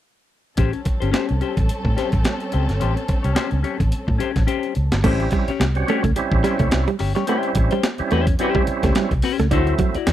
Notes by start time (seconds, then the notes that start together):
0.57 A1 G3 C4 C#4 G4 A4 C5, kick, closed hi-hat
0.73 muted clean electric guitar stroke, closed hi-hat
0.85 muted clean electric guitar stroke, kick, closed hi-hat
1.00 G1 C#4 G4 C5, closed hi-hat
1.11 C#4 G4 C5, snare, closed hi-hat
1.29 C2, muted clean electric guitar stroke, closed hi-hat
1.41 C#4 G4 C5, closed hi-hat
1.57 A1, muted clean electric guitar stroke, kick, closed hi-hat
1.69 muted fingered electric bass stroke, closed hi-hat
1.84 A2, muted clean electric guitar stroke, kick
1.97 C#4 G4 C5, snare, closed hi-hat
2.12 A1, muted clean electric guitar stroke, kick, closed hi-hat
2.23 muted clean electric guitar stroke, snare, closed hi-hat
2.40 closed hi-hat
2.52 C#2 C#4 G4 C5, closed hi-hat
2.67 G1, muted clean electric guitar stroke, snare, closed hi-hat
2.80 A1 C#4 G4 C5, closed hi-hat
2.97 muted clean electric guitar stroke, closed hi-hat
3.08 muted clean electric guitar stroke, kick, closed hi-hat
3.23 C2 C#4 G4 C#5, closed hi-hat
3.35 C#4 G4 C5, snare, closed hi-hat
3.51 C#2, muted clean electric guitar stroke, closed hi-hat
3.63 C#4 G4 C#5, closed hi-hat
3.79 A1, muted clean electric guitar stroke, kick, closed hi-hat
3.92 muted fingered electric bass stroke, closed hi-hat
4.07 A2, muted clean electric guitar stroke, kick
4.19 C#4 G4 C5, closed hi-hat
4.33 A1, muted clean electric guitar stroke, kick, snare, closed hi-hat
4.47 C#4 G4 C5, closed hi-hat
4.63 closed hi-hat
4.75 C#2, muted clean electric guitar stroke, closed hi-hat
4.92 G1, muted clean electric guitar stroke, snare, closed hi-hat
5.04 A1 G3 A3 C4 C#4 E4 G4 C5, kick, closed hi-hat, crash
5.20 muted clean electric guitar stroke, closed hi-hat
5.31 G3, muted clean electric guitar stroke, kick, closed hi-hat
5.48 C#4 G4 C#5, muted fingered electric bass stroke, closed hi-hat
5.60 C2, muted clean electric guitar stroke, snare, closed hi-hat
5.75 G3 C4 C#4 F#4, muted clean electric guitar stroke, closed hi-hat
5.88 A3 C#4 G4 C#5, closed hi-hat
6.03 C#2 A3, muted clean electric guitar stroke, kick, closed hi-hat
6.16 G3 C4 C#4 E4, muted clean electric guitar stroke, muted fingered electric bass stroke, closed hi-hat
6.32 A1, muted clean electric guitar stroke, kick
6.43 G3 C#4 G4 C5, snare, closed hi-hat
6.58 C2 A3 C#4 G4 C#5, kick, closed hi-hat
6.71 C2, muted clean electric guitar stroke, snare, closed hi-hat
6.88 G3, muted clean electric guitar stroke, closed hi-hat
6.99 G1 C#4 G4 C#5, muted clean electric guitar stroke, open hi-hat
7.15 G3 C#4 G4 C#5, snare, closed hi-hat
7.27 G3 A3 C4 C#4 E4 G4 C5, closed hi-hat
7.43 closed hi-hat
7.55 A1, muted clean electric guitar stroke, kick, closed hi-hat
7.71 G3 C#4 G4 C5, closed hi-hat
7.83 snare, closed hi-hat
7.98 G3 C4 C#4 E4, muted clean electric guitar stroke, muted fingered electric bass stroke, closed hi-hat
8.11 E2 A3 C#4 G4 C5, closed hi-hat
8.27 muted clean electric guitar stroke, kick, closed hi-hat
8.39 G3 C4 C#4 E4 G4 C5, closed hi-hat
8.55 G3, kick
8.67 muted clean electric guitar stroke, muted fingered electric bass stroke, closed hi-hat
8.83 C#2 A3 C#4 G4 C5, kick, snare, closed hi-hat
8.95 G3, snare, closed hi-hat
9.11 C2, muted clean electric guitar stroke, kick, closed hi-hat
9.22 C#4 G4 C5, muted clean electric guitar stroke, snare, open hi-hat
9.39 C#2 A3, muted clean electric guitar stroke, snare, closed hi-hat
9.51 D2 F#3 A3 C4 D4 E4 F#4 C5, kick, closed hi-hat
9.67 muted clean electric guitar stroke, closed hi-hat
9.78 F#3, muted clean electric guitar stroke, kick, closed hi-hat
9.94 E4 F#4 D5, muted fingered electric bass stroke, closed hi-hat
10.07 E2, muted clean electric guitar stroke, snare, closed hi-hat